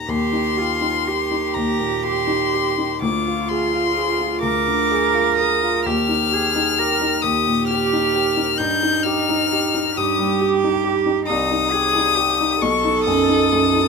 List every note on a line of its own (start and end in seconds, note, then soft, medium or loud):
0.00 0.08 D#2 soft
0.00 0.11 A#2 soft
0.00 0.11 D#4 soft
0.00 0.11 G4 soft
0.00 0.11 A#5 medium
0.08 1.54 D#2 medium
0.08 0.59 G4 medium
0.08 1.56 C6 loud
0.33 0.73 D#4 soft
0.57 1.09 F4 medium
0.57 0.97 G4 medium
0.82 1.21 D#4 medium
1.07 1.46 G4 medium
1.07 3.02 G4 medium
1.31 1.70 D#4 soft
1.54 2.98 D#2 medium
1.54 2.05 A#5 medium
1.79 2.18 A#2 medium
2.03 2.43 G4 medium
2.03 3.01 C6 medium
2.27 2.67 D#4 medium
2.54 2.92 G4 medium
2.78 3.02 D#4 soft
3.01 4.41 D2 medium
3.01 4.43 F4 medium
3.01 3.50 D6 medium
3.28 3.65 F4 medium
3.48 3.88 G#4 medium
3.48 4.41 C6 medium
3.74 4.11 F4 medium
3.97 4.34 G#4 medium
4.19 4.57 F4 medium
4.42 5.81 D2 medium
4.42 5.88 A#4 loud
4.42 5.36 D6 loud
4.68 5.05 D3 medium
4.92 5.29 G#4 medium
5.14 5.53 F4 medium
5.38 5.77 G#4 medium
5.38 5.85 D#6 medium
5.63 5.86 F4 medium
5.85 7.22 D#2 medium
5.85 6.35 G4 medium
5.85 7.23 F6 loud
6.09 6.46 D#4 medium
6.32 6.69 G4 medium
6.32 6.80 G#4 medium
6.56 6.92 D#4 medium
6.79 7.15 G4 medium
6.79 7.25 A#4 medium
7.01 7.37 D#4 medium
7.22 8.54 D#2 medium
7.22 8.57 G4 medium
7.22 7.67 D#6 loud
7.47 7.82 A#2 medium
7.67 8.05 G4 medium
7.67 8.59 F6 loud
7.93 8.28 D#4 medium
8.16 8.50 G4 medium
8.37 8.59 D#4 medium
8.58 9.96 G2 medium
8.58 9.93 D#4 medium
8.58 9.05 G6 loud
8.83 9.19 D#4 medium
9.03 9.42 G4 medium
9.03 9.98 F6 loud
9.29 9.65 D#4 medium
9.52 9.88 G4 medium
9.75 10.10 D#4 medium
9.97 11.24 G2 medium
9.97 11.25 G4 loud
9.97 10.41 D#6 medium
10.19 10.54 G3 medium
10.41 10.75 G4 medium
10.64 10.98 D#4 medium
10.85 11.19 G4 medium
11.06 11.28 D#4 medium
11.27 12.58 C2 medium
11.27 11.73 D#4 medium
11.27 12.63 D#6 loud
11.51 11.86 D#4 medium
11.71 12.08 G4 medium
11.71 12.16 G#4 medium
11.96 12.30 D#4 medium
12.15 12.59 G4 medium
12.15 12.52 G4 medium
12.40 12.62 D#4 medium
12.60 13.88 B1 medium
12.60 13.88 A4 loud
12.60 13.04 C#6 loud
12.85 13.20 D#4 medium
13.05 13.42 F#2 medium
13.05 13.88 D#6 loud
13.30 13.65 D#4 medium
13.53 13.87 F#2 medium
13.76 13.88 D#4 medium